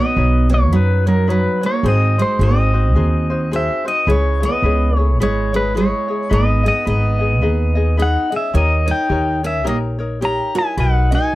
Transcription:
Already playing: B3 D#4 F#4 C#5 D#5
0.16 B1 D#4 F#4 B4 C#5
0.49 A#3 D#4 F#4 C#5
0.54 C#5
0.72 F#2 F#3 D#4 F#4 B4 C#5
1.06 F#3 D#4 F#4 A#4 C#5
1.27 F#3 D#4 F#4 B4 C#5
1.32 B4
1.61 A#3 D#4 F#4 C#5
1.66 C#5
1.83 G#1 C4 D#4 F#4 G#4 C5
1.88 D#5
2.18 G#3 D#4 F#4 C5
2.39 G#1 C4 D#4 F#4 G#4 C5 D#5
2.73 D#4 F#4 C5
2.95 D#2 D#4 F#4 G#4 C5
3.30 D#4 F#4 C5
3.51 C4 D#4 F#4 G#4 C5
3.56 E5
3.85 C4 D#4 F#4 C5 D#5
4.07 C#2 G#3 E4 G#4 B4 C#5
4.11 C#5
4.40 B3 E4 G#4 C#5
4.45 D#5
4.62 C#2 E4 G#4 B4 C#5
4.96 A3 E4 G#4 C#5
5.18 G#1 G#3 E4 G#4 B4 C#5
5.23 C#5
5.53 G#3 E4 G#4 B4 C#5
5.75 G#3 E4 G#4 B4 C#5
6.08 E4 G#4 C#5
6.29 G#1 B3 D#4 G#4 B4 D#5
6.34 D#5
6.63 B3 D#4 G#4 D#5
6.68 D#5
6.85 G#1 B3 D#4 G#4 B4 D#5
6.90 D#5
7.19 D#4 G#4 D#5
7.42 D#2 D#4 G#4 B4 D#5
7.75 D#4 G#4 D#5
7.97 D#4 G#4 B4 D#5
8.02 F#5
8.30 C#4 D#4 G#4 D#5
8.36 E5
8.53 D#2 A#3 D#4 G4 A#4 C#5 D#5
8.86 D#4 A#4 C#5
8.91 G5
9.09 D#2 D#4 G4 A#4 C#5
9.43 C#4 D#4 A#4 C#5 E5
9.64 A#1 A#3 D#4 G4 A#4 C#5
9.69 D#5
9.99 D#4 A#4 C#5
10.21 D#4 G4 A#4 C#5
10.25 A#5
10.55 D#4 E4 A#4 C#5 G#5
10.77 B1 D#4 F#4 A#4 B4 D#5 F#5
11.11 D#4 F#4 A#4 D#5
11.15 G#5

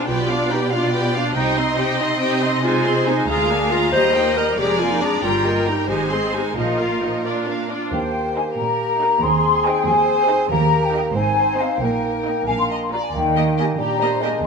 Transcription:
0.07 B1 B2 B3 F4 G4 B4 D5 G5
0.29 D4 F4 D5 F5
0.50 B3 D#4 G4 B4 G5
0.71 D4 F4 D5 F5
0.92 B3 G4 B4 G5
1.13 D4 F4 D5 F5
1.35 C2 C3 D#4 G4 C5 D#5 G5
1.57 C4 D#4 D#5 C6
1.78 D#4 G4 C5 G5
2.00 C4 D#4 D#5 C6
2.21 D#4 G4 C5 G5
2.41 C4 D#4 D#5 C6
2.63 G#3 D#4 F4 C5 G#5
2.85 C4 G#4 D#5 C6
3.07 G#3 D#4 C5 G#5
3.28 D2 G#3 F4 G#4 F5 A#5
3.50 A#3 D4 A#4 G#5
3.71 G#3 F4 G#4 A#5
3.92 D#2 G3 G4 C5 D#5 A#5
4.15 A#3 D#4 A#4 G5
4.37 G3 G4 A#4 D#5 A#5
4.57 F1 F2 G#3 G4 G#4 D5 A#5
4.80 A#3 F4 A#4 G#5
4.91 D#4
5.01 G#3 D4 G#4 D5 A#5
5.22 G1 G2 G3 F4 G4 A#4 G5 A#5
5.44 A#3 A#4 D#5 G5
5.66 G3 D#4 G4 G5 A#5
5.88 G#1 G#2 G#3 D#4 G4 C5 G#5
6.10 C4 G#4 D#5 C6
6.33 G#3 D#4 G4 C5 G#5
6.56 A#1 A#2 F3 D#4 F4 A#4 D#5
6.79 A#3 F4 A#4 F5
7.02 F3 D#4 F4 D#5
7.24 D4 F4 D5
7.48 A#3 D4 A#4 F5
7.70 D4 F4 D5
7.92 D#2 A#3 G4 C5 G5
8.36 D#4 G4 A#4 G#5
8.58 A#2 A#4 A#5
9.01 D#4 G4 A#4
9.22 D#2 C4 G#4 C6
9.65 D#4 G#4 C5 G5
9.86 D#2 C5 G#5
10.29 D#4 G#4 C5
10.50 D#2 A#3 G4 A#4 A#5
10.85 G5
10.93 D#4 G4 D#5 G5
11.15 G#1 G#2 C4 D#4 C5 G#5
11.59 C4 D#4 D#5 F5
11.81 A#1 A#2 A#3 D#4 A#4 G5
12.25 A#3 D#4 D#5
12.47 A#1 A#2 A#3 D4 F5 G#5
12.59 C6
12.70 D#5 A#5
12.82 C6
12.92 A#3 F4 D5 A#5
13.04 G#5
13.14 D#2 D#3 A#3 D#4 G5
13.36 A#3 G4 D#5
13.58 A#3 G4 D#5 G#5
13.79 A#2 G3 D4 G4 A#5
14.00 G3 A#3 G4 C5 D#5
14.21 G#3 A#3 G4 A#4 D#5
14.43 D#2 C4

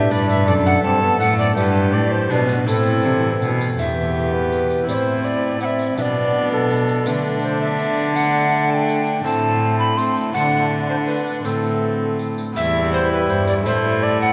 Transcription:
Already playing: A2 B2 D4 G4 E5
0.11 G2 B4 D5, tambourine
0.29 E5, tambourine
0.43 F#3 D4 A4
0.47 F#2 A4 D5, tambourine
0.66 F#5
0.80 G2 D4 A4 A5
0.84 C4
1.02 B3
1.20 A2 A3 F#5, tambourine
1.38 D5, tambourine
1.53 D4 G4 B4
1.57 G2 D4, tambourine
1.93 A2 D5
2.11 C5
2.27 B2 D4 G4 B4, tambourine
2.31 B2
2.49 B3, tambourine
2.64 A2 A3 C4 E4 A4 C5
2.68 tambourine
3.04 C3 E3
3.42 B2, tambourine
3.61 tambourine
3.75 E2 B3 E4 G4 E5, tambourine
3.79 E2
4.33 B4
4.52 tambourine
4.70 tambourine
4.84 A2 C4 E4 A4
4.88 A2 C4 D5, tambourine
4.94 C5
5.25 D5
5.57 C4 E4 A4, tambourine
5.62 E5 F#5
5.79 tambourine
5.94 B2 F#3 B3 D4 E5, tambourine
5.98 B3 D5
6.52 A4
6.70 tambourine
6.88 tambourine
7.03 D3 A3 D4 A4 B4, tambourine
7.43 C5
7.61 E5
7.79 tambourine
7.97 tambourine
8.12 A3 D4 F#5, tambourine
8.70 G5 A5
8.89 tambourine
9.07 tambourine
9.21 A2 A3 C4 E4 A5
9.25 A2, tambourine
9.79 B5
9.97 A3 C4 C6, tambourine
10.17 tambourine
10.30 D3 A3 D4 F#4 F#5
10.35 D3 A3, tambourine
10.89 C5
11.07 B4, tambourine
11.26 tambourine
11.41 A2 A3 C4 E4 A4, tambourine
11.45 A2
12.19 tambourine
12.38 tambourine
12.52 E2 G3 B3 E4 G4, tambourine
12.56 E2 E4 E5
12.93 C5
13.12 B4
13.29 G2 C5, tambourine
13.48 D5, tambourine
13.62 A2 C4 E4 A4
13.66 A2 A3 C5, tambourine
14.03 D5
14.21 F#5

